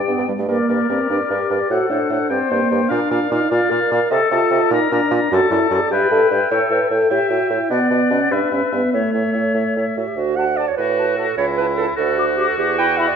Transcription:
Already playing: G4 D5 G5
0.08 G2 B3
0.18 G2
0.28 G2 G3
0.39 G2 A3
0.48 G2 A#3 A#4 D5
0.68 G2 A#4 D5
0.89 G2 C4 A#4 D5
1.10 G2 D4 A#4 D5
1.30 G2 G4 A#4 D5
1.50 G2 A#4 D5
1.70 A2 F#4 A4 C5 F#5
1.89 A2 D4 C5 F#5
2.10 A2 C5 F#5
2.29 G2 C4 C5 D5 G5
2.50 G2 A#3 D5 G5
2.70 G2 D5 G5
2.88 A#2 D4 A#4 D5 F5
3.11 A#2 D5 F5
3.30 A#2 D#4 D5 F5
3.50 A#2 F4 D5 F5
3.70 A#2 A#4 D5 F5
3.90 A#2 D5 F5
4.10 C3 A4 D#5 A5
4.31 C3 F4 D#5 A5
4.51 C3 D#5 A5
4.70 A#2 D#4 A#4 D5 A#5
4.90 A#2 D4 D5 A#5
5.11 A#2 D5 A#5
5.30 F#2 F#4 A4 D5 A5
5.51 F#2 E4 D5 A5
5.71 F#2 F#4 D5 A5
5.81 A4
5.90 G2 G4 B4 E5 G5
6.11 G2 A4 E5 G5
6.31 G2 B4 E5 G5
6.50 A2 A4 C#5 E5 G5
6.70 A2 B4 E5 G5
6.90 A2 A4 E5 G5
7.10 A2 G4 E5 G5
7.29 A2 F#4 E5 G5
7.50 A2 E4 E5 G5
7.70 B2 B3 D5 F#5
7.89 B2 D5 F#5
8.10 B2 C#4 D5 F#5
8.31 G2 D4 B4 E5
8.50 G2 C#4 B4 E5
8.71 G2 B3 B4 E5
8.92 A2 A3 C#5 E5
9.12 A2 C#5 E5
9.32 A2 C#5 E5
9.54 A2 C#5 E5
9.76 A2 C#5 E5
9.96 A2 F#4 E5
10.07 G4
10.16 D2 F#4
10.36 F#4 F#5 A5
10.57 F#4 D5 A5
10.68 C#5
10.77 A2 F#4 B4
10.98 F#4 A5
11.17 F#4 A4 A5
11.37 C#2 E4 C#5
11.58 E4 B4 A5
11.77 E4 A4 A5
11.97 D2 F#4 A4
12.18 F#4 D6
12.37 F#4 G4 D6
12.48 A4
12.58 E2 G4
12.78 E4 G5 B5
12.98 E4 E5 B5
13.09 D5

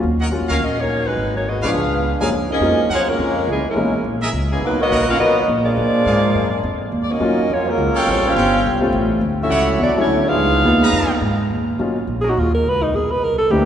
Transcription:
0.03 D#2
0.20 A#4 C#5 D#5 F#5
0.31 F#3 A#3 C#4 F4
0.41 F#2
0.48 D2 C#4 F#4 A#4 C#5 D#5 F5
0.60 A#1 C#4 F#4 A#4 D#5
0.79 A#3 D#4 F#4 C#5
1.07 G#3 D#4 F#4 B4
1.17 G#1
1.36 A#3 D#4 F#4 C#5
1.47 B3 F#4 G#4 D#5
1.62 B1 F3 G#3 B3 D4 F4 G#4 B4 C#5 D5 F5
1.67 B4
1.75 C#2
2.20 F#2 F3 G#3 A#3 C#4 G#4 A#4 F5 G#5, muted upright bass stroke
2.31 F#2
2.49 F3 A#3 C#4 D#4 G#4 A#4 D#5
2.60 F2 F#3 G#3 A#3 C#4 F4
2.90 F#2 F3 A#3 C#4 F4 G#4 A#4 C#5 F5 F#5
3.09 C#3 F3 G#3 A#3 C#4 F4 A#4
3.19 F2
3.47 C#2 C#3 E3 G#3 C#4 G#4
3.51 E3 A#3
3.64 C#3 E3 A#3, muted upright bass stroke
3.69 G#3 C#4 E4 A#4
3.75 B1 E3 G#3 A#3 C#4 D#4
4.04 A#1
4.22 G#4 A#4 D#5 E5
4.33 C#2
4.51 C#3 E3 G#3 A#3 C#4 G#4
4.61 B1 D#3 F#3 A#3 B3 D#4 B4
4.78 F#3 A#3 B3 D#4 F#4 A#4 D#5, muted upright bass stroke
4.90 A#1 A#4 B4 D#5 F#5
5.08 C#4 F4 F#4 A#4 F5
5.19 B1 F#3 A#3 B3 D#4 F#4 A#4 D#5
5.48 A#1
5.65 F3 G#3 A#3 D4 F4 G#4 D5
5.77 A#2
6.06 G#2 G#4 A#4 D5 F5
6.35 F#2
6.63 F2
6.92 D#2
7.02 D5
7.09 F#3 A#3 C#4 D#4 F#4 A#4 D#5
7.20 F#2 F#3 A#3 C#4 D#4 F4
7.38 muted upright bass stroke
7.49 F2 F#3 A#3 C#4 F4 F#4 C#5
7.67 C#3 F#3 A#3 C#4 F4 A#4
7.78 C#2
7.95 A4 C#5 F5 G5, muted upright bass stroke
8.07 A1 F3 G3 C4 C#4 F4 C#5
8.25 G3 C#4 F4 G4 C5 F5
8.36 G1 A4 C#5 F5 G5
8.64 C2
8.80 G3 A3 C4 C#4 F4
8.93 A1
9.21 D2
9.41 A3 C#4 E4 F#4 A4 E5
9.50 C#2 C#5 D5 E5 F#5
9.78 E2 F#3 A3 D4 E4
9.82 A3 F#4 D5
9.95 F#3 A3 C#4 D4 E4 F#4, muted upright bass stroke
10.00 A3 E4 C#5
10.07 D2
10.25 G#3 B3 D#4 F4 G#4 B4 F5
10.35 C#2
10.64 D#2 G#3 A#3 B3 D#4 F4
10.82 B4 D#5 F5 A#5
10.92 F2
11.21 G#2
11.51 D#2
11.79 B1 F#3 A#3 C#4 D#4 F4
12.07 A#1
12.21 F#3 C#4 D#4 G#4 A#4
12.29 F#4
12.37 D#2 F4
12.54 A#4
12.66 C#2 B4
12.83 D#4
12.93 B1 G#4
13.11 B4
13.22 C2 A#4
13.38 A4
13.50 D2 E3 G3 A#3 C4 D4 E4 G4 A#4

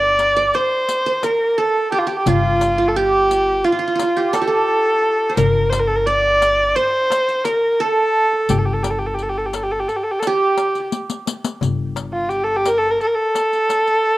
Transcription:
Already playing: G1 A#4 D5
0.19 riq, darbuka tek
0.36 D5
0.54 C5, riq, darbuka ka
0.89 riq
1.06 C5, riq, darbuka ka
1.23 A#4, riq, darbuka tek
1.58 A4
1.92 G4, darbuka ka
1.99 F4
2.07 G4
2.18 G4
2.26 G1 F4, riq, darbuka dum
2.61 riq, darbuka tek
2.78 F4
2.88 A4
2.96 G4, riq, darbuka ka
3.31 riq
3.64 F4, riq, darbuka ka
3.72 F4
3.79 F4
3.88 F4
3.95 F4, darbuka tek
3.99 F4, riq
4.16 G4, riq, darbuka ka
4.33 A4, riq, darbuka tek
4.42 G4
4.48 A4, darbuka ka
5.03 darbuka ka
5.29 C5
5.37 G1 A#4, riq, darbuka dum
5.69 C5, riq, darbuka tek
5.80 A#4
5.88 A4
5.96 A#4
6.06 D5, riq, darbuka ka
6.42 riq, darbuka tek
6.75 C5, riq, darbuka ka
7.10 riq, darbuka tek
7.28 riq, darbuka ka
7.44 A#4, riq, darbuka tek
7.62 darbuka ka
7.80 A4
8.15 darbuka ka
8.49 G1 G4, riq, darbuka dum
8.58 A4
8.65 G4
8.73 A4
8.83 G4, riq, darbuka tek
8.90 A4
8.98 G4
9.06 A4
9.14 G4
9.19 A4, riq, darbuka ka
9.29 G4
9.38 A4
9.46 G4
9.53 A4, riq, darbuka tek
9.63 G4
9.71 A4
9.80 G4
9.88 A4, riq, darbuka ka
9.96 G4
10.03 A4
10.11 G4
10.19 A4, riq, darbuka tek
10.27 G4
10.40 darbuka ka
10.57 riq, darbuka tek
10.75 riq, darbuka ka
10.92 riq
11.10 riq
11.26 riq, darbuka ka
11.44 riq
11.61 G1, riq, darbuka dum
11.96 riq, darbuka tek
12.13 F4
12.29 G4, riq, darbuka ka
12.43 A4
12.56 G4
12.65 A#4, riq, darbuka tek
12.78 A4
12.91 A#4
13.01 A4, riq
13.07 A#4
13.15 A4
13.35 riq, darbuka tek
13.53 riq
13.69 riq, darbuka tek
13.87 riq, darbuka ka

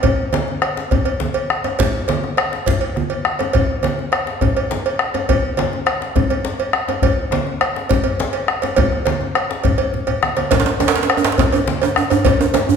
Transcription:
0.03 bombo low, cowbell, low conga, djembe bass
0.33 bombo rim, cowbell, djembe slap, high conga
0.48 djembe tone
0.62 bombo rim, cowbell, djembe slap
0.77 djembe slap
0.91 bombo low, cowbell, djembe bass, low conga
1.05 cowbell, djembe tone
1.20 djembe slap, high conga
1.34 cowbell, high conga
1.50 bombo rim
1.64 bombo rim, cowbell, djembe slap, djembe tone
1.79 bombo rim, bombo low, cowbell, djembe slap, high conga, djembe bass, low conga
2.08 cowbell, djembe slap, high conga
2.23 bombo rim, djembe tone, high conga
2.37 bombo rim, cowbell, djembe slap
2.52 bombo rim, djembe slap
2.66 bombo low, cowbell, djembe slap, high conga, low conga, djembe bass
2.81 cowbell
2.96 bombo rim, high conga
3.10 cowbell, djembe slap
3.25 bombo rim, djembe slap
3.39 bombo rim, cowbell, djembe slap, djembe tone
3.53 bombo low, cowbell, low conga, djembe bass
3.83 bombo rim, cowbell, djembe slap, high conga
3.99 djembe tone
4.12 bombo rim, cowbell, djembe slap
4.27 djembe slap
4.41 bombo low, cowbell, djembe bass, low conga
4.57 cowbell, djembe tone
4.71 djembe slap, high conga
4.86 cowbell, high conga
4.99 bombo rim
5.14 bombo rim, cowbell, djembe slap, djembe tone
5.29 bombo low, cowbell, djembe bass, low conga
5.57 bombo rim, cowbell, djembe slap, high conga
5.73 djembe tone
5.86 bombo rim, cowbell, djembe slap
6.02 djembe slap
6.16 bombo low, cowbell, low conga, djembe bass
6.30 cowbell, djembe tone
6.45 djembe slap
6.60 cowbell, high conga
6.73 bombo rim
6.88 bombo rim, cowbell, djembe slap, djembe tone
7.02 bombo low, cowbell, djembe bass, low conga
7.31 bombo rim, cowbell, djembe slap, high conga
7.47 djembe tone
7.61 bombo rim, cowbell, djembe slap
7.76 djembe slap
7.89 bombo low, cowbell, djembe bass, low conga
8.04 cowbell, djembe tone
8.20 djembe slap, high conga
8.33 cowbell, high conga
8.48 bombo rim
8.62 cowbell, djembe slap, djembe tone
8.76 bombo low, cowbell, djembe bass, low conga
8.92 bombo rim, djembe slap
9.06 bombo rim, cowbell, djembe slap, high conga
9.21 djembe slap, djembe tone
9.35 bombo rim, cowbell, djembe slap
9.51 djembe slap
9.64 bombo low, cowbell, djembe bass, low conga
9.78 cowbell, djembe bass
9.94 djembe bass, low conga
10.07 bombo rim, cowbell, djembe bass, low conga
10.22 bombo rim, djembe slap, high conga
10.37 cowbell, djembe slap, high conga
10.51 bombo low, cowbell, djembe slap, djembe bass, low conga
10.60 djembe slap
10.66 djembe slap
10.80 bombo rim, cowbell, djembe slap, djembe tone, high conga
10.88 djembe slap
10.95 djembe slap, djembe tone
11.03 djembe slap
11.10 bombo rim, cowbell, djembe slap
11.17 djembe tone
11.24 djembe slap
11.32 djembe slap
11.38 bombo low, cowbell, djembe slap, djembe bass, low conga
11.53 cowbell, djembe tone
11.68 djembe slap, high conga
11.82 cowbell, high conga, djembe tone
11.96 bombo rim, djembe tone
12.10 bombo rim, cowbell, djembe slap, djembe tone, djembe bass
12.24 bombo low, cowbell, djembe slap, low conga, djembe bass
12.41 djembe tone
12.54 bombo rim, cowbell, djembe slap, djembe tone, high conga
12.69 djembe tone, djembe bass

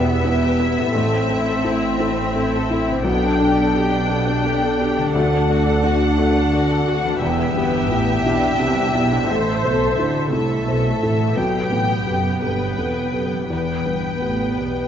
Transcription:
Already playing: E1 E2 E3 B3 E4 G4 B4 E5
0.07 B3
0.24 B3 E4 B4
0.42 G4
0.59 E4 G4 B4
0.77 A2 B3
0.82 C4
0.86 E4
0.91 A1 C4 A4
0.95 A2 A3
1.14 C4
1.30 C4 E4 A4
1.50 A4
1.65 E4 A4
1.84 C4
2.00 A3 E4 A4
2.20 C4
2.36 C4 E4 A4
2.54 A4
2.71 E4 A4
2.88 B2 C4
2.93 D4
2.97 G4
3.01 B1 B2 A4
3.06 B1 B3 D4 G5
3.25 D4
3.40 D4 G4 A4
3.59 A4
3.75 G4 A4
3.92 D4
4.10 B3 G4 A4
4.27 D4
4.45 D4 G4 A4
4.62 A4
4.79 G4 A4
4.97 D3 D4
5.01 D4
5.06 F#4
5.10 A4
5.15 D2 A3 F#5
5.33 D4
5.50 D4 F#4 A4
5.67 A4
5.84 F#4 A4
6.02 D4
6.18 A3 F#4 A4
6.36 D4
6.53 D4 F#4 A4
6.70 A4
6.88 F#4 A4
7.03 E3 D4
7.07 B3
7.12 E4
7.17 G4
7.21 E1 E2 B3 G4 E5
7.55 G1 G2 B3 G4
7.90 A1 A2 E4 G4
8.25 B1 B2 D4 E4 G4
8.59 C2 C3 B3 G4
8.94 B1 B2 E4 G4
9.10 A2
9.15 C5
9.20 E4
9.24 A4
9.28 A1 A2 A4 C5
9.63 B1 B2 A4 C5
9.97 D2 D3 E4 A4
10.31 C2 C3 A3 E4 A4 E5
10.67 B1 B2 A4 C5
11.01 A1 A2 E4 A4
11.18 B2
11.23 B3
11.27 G4
11.32 A4
11.36 B1 B2 B3 G4 G5
11.71 A1 A2 B3 A4
12.06 F#1 F#2 G4 A4
12.42 G1 G2 G4 A4 B4 G5
12.77 E1 E2 B3 A4
13.13 F#1 F#2 G4 A4
13.31 E3
13.36 B3
13.41 G4
13.45 E2 B4
13.50 E1 E2 B3 B4 G5
13.86 G1 G2 B3 B4
14.22 A1 A2 G4 B4
14.58 B1 B2 G4 B4

